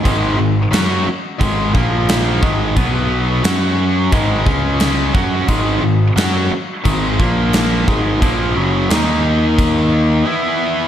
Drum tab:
CC |x-x-x-x-|x-x-x-x-|x-x-x-x-|x-x-x---|
SD |--o---o-|--o---o-|--o---o-|--o-----|
BD |o---oo-o|o---oo-o|o---oo-o|o---o---|